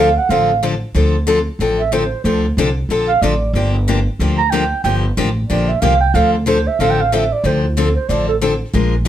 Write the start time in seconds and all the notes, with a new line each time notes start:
Already playing: D2 F5
0.17 F#5
0.29 A1 D3 F3 C4 D4 A4 F5
0.63 D3 F3 C4 D4 A4
0.94 D2 D3 F3 C4 D4 A4
1.27 D3 F3 C4 D4 A4
1.59 A1 D3 F3 C4 D4 A4
1.79 E5
1.92 D3 F3 C4 D4 A4 C5
2.24 D2 D3 F3 C4 D4 A4 C5
2.57 C2 D3 F3 C4 D4 A4
2.89 A#1 D3 F3 C4 D4 A4
3.08 F5
3.22 A1 D3 F3 C4 D4 A4 D5
3.53 G1 D3 F3 A#3 D4 G4 D5
3.88 D3 F3 A#3 D4 G4
4.19 D2 D3 F3 A#3 D4 G4
4.38 A#5
4.50 D3 F3 A#3 D4 G4 G5
4.84 G1 D3 F3 A#3 D4 G4 G5
5.17 A1 D3 F3 A#3 D4 G4
5.48 A#1 D3 F3 A#3 D4 G4 D5
5.69 E5
5.81 C2 D3 F3 A#3 D4 G4 F5
6.00 G5
6.14 D2 D3 F3 C4 D4 A4 F5
6.33 A4
6.46 D3 F3 C4 D4 A4 C5
6.67 E5
6.79 A1 D3 F3 C4 D4 A4 F5
6.90 G5
7.01 F5
7.12 D3 F3 C4 D4 A4 E5
7.32 D5
7.44 D2 D3 F3 C4 D4 A4 C5
7.65 E4
7.77 D3 F3 C4 D4 A4
7.95 C5
8.09 A1 D3 F3 C4 D4 A4 D5
8.28 A4
8.41 D3 F3 C4 D4 A4
8.73 A#1 F3 G#3 D4 F4 A#4
9.05 F3